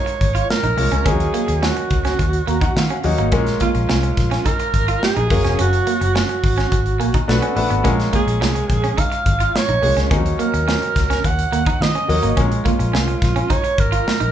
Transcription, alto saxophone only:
0.00 0.50 C#5 medium
0.50 1.09 A#4 medium
1.07 1.66 G#4 medium
1.65 3.05 F#4 medium
3.62 4.48 F4 medium
4.46 5.03 A#4 medium
5.04 5.62 G#4 loud
5.61 6.16 F#4 medium
6.17 7.54 F#4 medium
8.15 9.01 G#4 medium
9.00 9.58 F5 medium
9.57 10.12 C#5 medium
10.41 11.27 A#4 medium
11.26 11.83 F#5 medium
11.82 12.38 D#5 medium
12.67 13.54 F4 medium
13.52 13.82 C#5 medium
13.80 14.32 A#4 medium

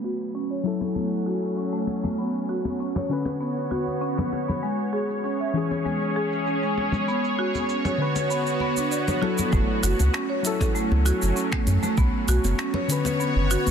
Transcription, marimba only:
0.04 0.19 F#4 medium
0.35 0.50 C#4 medium
0.51 0.65 C#5 medium
0.81 0.94 A4 medium
0.96 1.11 A3 medium
1.26 1.42 F#4 medium
1.57 1.72 C#4 medium
1.73 2.02 A3 medium
2.04 2.17 A3 medium
2.18 2.34 B3 medium
2.49 2.64 F#4 medium
2.80 2.95 C#4 medium
2.96 3.10 C#5 medium
3.26 3.39 B4 medium
3.41 3.56 B3 medium
3.71 3.87 F#4 medium
4.01 4.17 C#4 medium
4.17 4.47 B3 medium
4.48 4.62 B3 medium
4.63 4.78 G#3 medium
4.93 5.09 G#4 medium
5.24 5.40 C#4 medium
5.40 5.54 E5 medium
5.71 5.84 C#5 medium
5.85 6.01 G#3 medium
6.16 6.32 G#4 loud
6.48 6.63 C#4 medium
6.63 6.92 G#3 medium
6.93 7.07 G#3 medium
7.08 7.23 B3 medium
7.39 7.54 F#4 medium
7.69 7.85 C#4 medium
7.85 7.99 C#5 medium
8.16 8.29 B4 medium
8.31 8.46 B3 medium
8.61 8.70 B3 medium
8.77 8.90 D4 medium
8.91 9.06 D5 medium
9.07 9.21 C#5 medium
9.22 9.31 F#4 medium
9.38 9.47 B3 medium
9.52 9.68 A3 medium
9.83 9.99 F#4 medium
10.14 10.29 C#4 medium
10.29 10.44 C#5 medium
10.61 10.74 A4 medium
10.75 10.91 A3 medium
11.06 11.21 F#4 loud
11.36 11.52 C#4 medium
11.52 11.82 A3 medium
11.83 11.96 A3 medium
11.98 12.13 B3 medium
12.29 12.44 F#4 loud
12.59 12.74 C#4 medium
12.74 12.89 C#5 medium
13.06 13.19 B4 medium
13.20 13.35 B3 medium
13.51 13.66 F#4 loud

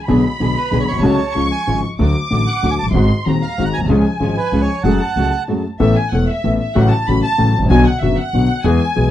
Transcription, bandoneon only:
0.57 0.78 B4 medium
0.80 0.83 C#5 medium
0.88 1.47 C#5 medium
1.51 1.81 G#5 medium
2.47 2.69 F#5 medium
2.71 2.74 G#5 medium
2.79 2.86 A5 medium
3.42 3.64 F5 medium
3.65 3.69 F#5 medium
3.73 3.81 G#5 medium
4.37 4.61 B4 medium
4.61 4.83 C#5 medium
4.83 5.43 F#5 medium

